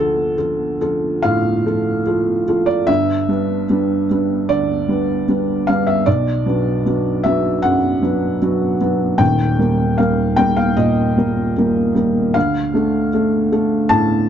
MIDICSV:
0, 0, Header, 1, 2, 480
1, 0, Start_track
1, 0, Tempo, 852273
1, 704, Tempo, 809717
1, 1670, Time_signature, 4, 2, 24, 8
1, 2624, Tempo, 786370
1, 8607, End_track
2, 0, Start_track
2, 0, Title_t, "Felt piano"
2, 0, Program_c, 0, 0
2, 0, Control_c, 0, 64, 127
2, 0, Note_on_c, 0, 38, 68
2, 0, Note_on_c, 0, 53, 48
2, 0, Note_on_c, 0, 65, 47
2, 0, Note_on_c, 0, 69, 89
2, 192, Note_off_c, 0, 53, 0
2, 192, Note_off_c, 0, 65, 0
2, 206, Note_off_c, 0, 69, 0
2, 212, Note_on_c, 0, 53, 50
2, 212, Note_on_c, 0, 65, 51
2, 214, Note_on_c, 0, 69, 51
2, 434, Note_off_c, 0, 53, 0
2, 435, Note_off_c, 0, 65, 0
2, 436, Note_off_c, 0, 69, 0
2, 455, Note_on_c, 0, 53, 54
2, 458, Note_on_c, 0, 65, 51
2, 458, Note_on_c, 0, 69, 55
2, 679, Note_off_c, 0, 53, 0
2, 681, Note_off_c, 0, 65, 0
2, 681, Note_off_c, 0, 69, 0
2, 690, Note_on_c, 0, 77, 97
2, 700, Note_on_c, 0, 45, 63
2, 939, Note_off_c, 0, 45, 0
2, 943, Note_on_c, 0, 53, 49
2, 948, Note_on_c, 0, 69, 52
2, 950, Note_on_c, 0, 65, 45
2, 1161, Note_off_c, 0, 53, 0
2, 1163, Note_off_c, 0, 69, 0
2, 1164, Note_off_c, 0, 65, 0
2, 1185, Note_on_c, 0, 53, 47
2, 1189, Note_on_c, 0, 65, 52
2, 1192, Note_on_c, 0, 69, 55
2, 1402, Note_off_c, 0, 53, 0
2, 1404, Note_off_c, 0, 65, 0
2, 1406, Note_off_c, 0, 69, 0
2, 1430, Note_on_c, 0, 53, 54
2, 1436, Note_on_c, 0, 65, 53
2, 1439, Note_on_c, 0, 69, 53
2, 1540, Note_off_c, 0, 77, 0
2, 1541, Note_on_c, 0, 74, 90
2, 1647, Note_off_c, 0, 53, 0
2, 1650, Note_off_c, 0, 65, 0
2, 1652, Note_off_c, 0, 69, 0
2, 1663, Note_on_c, 0, 76, 105
2, 1666, Note_off_c, 0, 74, 0
2, 1669, Note_on_c, 0, 31, 62
2, 1672, Note_on_c, 0, 43, 72
2, 1680, Control_c, 0, 64, 0
2, 1682, Note_off_c, 0, 38, 0
2, 1786, Control_c, 0, 64, 127
2, 1904, Note_off_c, 0, 31, 0
2, 1906, Note_off_c, 0, 43, 0
2, 1910, Note_on_c, 0, 55, 43
2, 1913, Note_on_c, 0, 62, 50
2, 1915, Note_on_c, 0, 71, 47
2, 2126, Note_off_c, 0, 55, 0
2, 2128, Note_off_c, 0, 62, 0
2, 2129, Note_off_c, 0, 71, 0
2, 2155, Note_on_c, 0, 55, 49
2, 2158, Note_on_c, 0, 62, 48
2, 2162, Note_on_c, 0, 71, 50
2, 2366, Note_off_c, 0, 55, 0
2, 2368, Note_off_c, 0, 62, 0
2, 2370, Note_off_c, 0, 71, 0
2, 2397, Note_on_c, 0, 55, 47
2, 2399, Note_on_c, 0, 62, 48
2, 2402, Note_on_c, 0, 71, 56
2, 2605, Note_off_c, 0, 55, 0
2, 2606, Note_off_c, 0, 62, 0
2, 2608, Note_off_c, 0, 71, 0
2, 2620, Note_off_c, 0, 76, 0
2, 2625, Note_on_c, 0, 74, 96
2, 2631, Note_on_c, 0, 38, 60
2, 2861, Note_off_c, 0, 38, 0
2, 2865, Note_on_c, 0, 55, 46
2, 2870, Note_on_c, 0, 62, 44
2, 2873, Note_on_c, 0, 71, 53
2, 3080, Note_off_c, 0, 55, 0
2, 3083, Note_off_c, 0, 62, 0
2, 3084, Note_off_c, 0, 71, 0
2, 3110, Note_on_c, 0, 55, 50
2, 3113, Note_on_c, 0, 62, 47
2, 3118, Note_on_c, 0, 71, 52
2, 3324, Note_off_c, 0, 55, 0
2, 3325, Note_off_c, 0, 62, 0
2, 3328, Note_off_c, 0, 71, 0
2, 3344, Note_off_c, 0, 74, 0
2, 3346, Note_on_c, 0, 77, 99
2, 3357, Note_on_c, 0, 55, 49
2, 3358, Note_on_c, 0, 62, 45
2, 3363, Note_on_c, 0, 71, 53
2, 3465, Note_off_c, 0, 77, 0
2, 3465, Note_on_c, 0, 76, 87
2, 3568, Note_off_c, 0, 55, 0
2, 3568, Note_off_c, 0, 62, 0
2, 3571, Note_off_c, 0, 71, 0
2, 3583, Note_on_c, 0, 74, 92
2, 3585, Note_off_c, 0, 76, 0
2, 3591, Note_on_c, 0, 35, 70
2, 3596, Control_c, 0, 64, 0
2, 3700, Control_c, 0, 64, 127
2, 3821, Note_off_c, 0, 35, 0
2, 3826, Note_on_c, 0, 62, 51
2, 3827, Note_on_c, 0, 54, 43
2, 3831, Note_on_c, 0, 71, 55
2, 4042, Note_off_c, 0, 54, 0
2, 4042, Note_off_c, 0, 62, 0
2, 4044, Note_off_c, 0, 71, 0
2, 4071, Note_on_c, 0, 62, 45
2, 4073, Note_on_c, 0, 54, 47
2, 4077, Note_on_c, 0, 71, 48
2, 4283, Note_off_c, 0, 62, 0
2, 4285, Note_off_c, 0, 54, 0
2, 4287, Note_off_c, 0, 71, 0
2, 4300, Note_on_c, 0, 76, 94
2, 4303, Note_off_c, 0, 74, 0
2, 4313, Note_on_c, 0, 54, 50
2, 4319, Note_on_c, 0, 62, 51
2, 4321, Note_on_c, 0, 71, 52
2, 4522, Note_off_c, 0, 54, 0
2, 4525, Note_off_c, 0, 62, 0
2, 4526, Note_off_c, 0, 71, 0
2, 4538, Note_on_c, 0, 78, 102
2, 4539, Note_off_c, 0, 76, 0
2, 4549, Note_on_c, 0, 42, 57
2, 4774, Note_off_c, 0, 42, 0
2, 4781, Note_on_c, 0, 54, 45
2, 4784, Note_on_c, 0, 62, 45
2, 4785, Note_on_c, 0, 71, 50
2, 4995, Note_off_c, 0, 54, 0
2, 4996, Note_off_c, 0, 62, 0
2, 4997, Note_off_c, 0, 71, 0
2, 5023, Note_on_c, 0, 54, 51
2, 5024, Note_on_c, 0, 62, 44
2, 5031, Note_on_c, 0, 71, 56
2, 5237, Note_off_c, 0, 54, 0
2, 5238, Note_off_c, 0, 62, 0
2, 5241, Note_off_c, 0, 71, 0
2, 5263, Note_on_c, 0, 54, 51
2, 5263, Note_on_c, 0, 62, 49
2, 5263, Note_on_c, 0, 71, 54
2, 5479, Note_off_c, 0, 54, 0
2, 5479, Note_off_c, 0, 62, 0
2, 5479, Note_off_c, 0, 71, 0
2, 5488, Note_on_c, 0, 79, 98
2, 5489, Note_on_c, 0, 27, 63
2, 5496, Note_on_c, 0, 39, 67
2, 5499, Note_off_c, 0, 78, 0
2, 5510, Control_c, 0, 64, 0
2, 5599, Control_c, 0, 64, 127
2, 5729, Note_off_c, 0, 27, 0
2, 5733, Note_off_c, 0, 39, 0
2, 5736, Note_on_c, 0, 55, 46
2, 5741, Note_on_c, 0, 58, 47
2, 5741, Note_on_c, 0, 70, 48
2, 5954, Note_off_c, 0, 55, 0
2, 5956, Note_off_c, 0, 58, 0
2, 5956, Note_off_c, 0, 70, 0
2, 5974, Note_off_c, 0, 79, 0
2, 5974, Note_on_c, 0, 77, 80
2, 5984, Note_on_c, 0, 55, 45
2, 5987, Note_on_c, 0, 58, 46
2, 5988, Note_on_c, 0, 70, 52
2, 6198, Note_off_c, 0, 55, 0
2, 6200, Note_off_c, 0, 58, 0
2, 6200, Note_off_c, 0, 70, 0
2, 6210, Note_on_c, 0, 79, 104
2, 6217, Note_off_c, 0, 77, 0
2, 6222, Note_on_c, 0, 55, 54
2, 6225, Note_on_c, 0, 58, 52
2, 6228, Note_on_c, 0, 70, 59
2, 6333, Note_on_c, 0, 77, 92
2, 6336, Note_off_c, 0, 79, 0
2, 6439, Note_off_c, 0, 55, 0
2, 6440, Note_off_c, 0, 58, 0
2, 6442, Note_off_c, 0, 70, 0
2, 6455, Note_on_c, 0, 75, 102
2, 6458, Note_off_c, 0, 77, 0
2, 6460, Note_on_c, 0, 46, 62
2, 6696, Note_off_c, 0, 46, 0
2, 6706, Note_on_c, 0, 55, 49
2, 6706, Note_on_c, 0, 58, 52
2, 6707, Note_on_c, 0, 70, 51
2, 6921, Note_off_c, 0, 55, 0
2, 6921, Note_off_c, 0, 58, 0
2, 6922, Note_off_c, 0, 70, 0
2, 6950, Note_on_c, 0, 55, 49
2, 6952, Note_on_c, 0, 58, 51
2, 6955, Note_on_c, 0, 70, 52
2, 7163, Note_off_c, 0, 55, 0
2, 7164, Note_off_c, 0, 58, 0
2, 7165, Note_off_c, 0, 70, 0
2, 7179, Note_on_c, 0, 55, 50
2, 7179, Note_on_c, 0, 58, 50
2, 7186, Note_on_c, 0, 70, 56
2, 7396, Note_off_c, 0, 55, 0
2, 7397, Note_off_c, 0, 58, 0
2, 7401, Note_off_c, 0, 70, 0
2, 7417, Note_on_c, 0, 77, 99
2, 7420, Note_off_c, 0, 75, 0
2, 7425, Note_on_c, 0, 38, 72
2, 7434, Control_c, 0, 64, 0
2, 7528, Control_c, 0, 64, 127
2, 7656, Note_off_c, 0, 38, 0
2, 7658, Note_on_c, 0, 57, 46
2, 7662, Note_on_c, 0, 62, 48
2, 7667, Note_on_c, 0, 69, 53
2, 7874, Note_off_c, 0, 57, 0
2, 7876, Note_off_c, 0, 62, 0
2, 7879, Note_off_c, 0, 69, 0
2, 7900, Note_on_c, 0, 57, 48
2, 7905, Note_on_c, 0, 62, 49
2, 7905, Note_on_c, 0, 69, 51
2, 8115, Note_off_c, 0, 57, 0
2, 8117, Note_off_c, 0, 62, 0
2, 8117, Note_off_c, 0, 69, 0
2, 8136, Note_on_c, 0, 57, 50
2, 8139, Note_on_c, 0, 62, 52
2, 8141, Note_on_c, 0, 69, 59
2, 8356, Note_off_c, 0, 57, 0
2, 8357, Note_off_c, 0, 62, 0
2, 8358, Note_off_c, 0, 69, 0
2, 8364, Note_on_c, 0, 81, 109
2, 8372, Note_on_c, 0, 45, 66
2, 8378, Note_off_c, 0, 77, 0
2, 8607, Note_off_c, 0, 45, 0
2, 8607, Note_off_c, 0, 81, 0
2, 8607, End_track
0, 0, End_of_file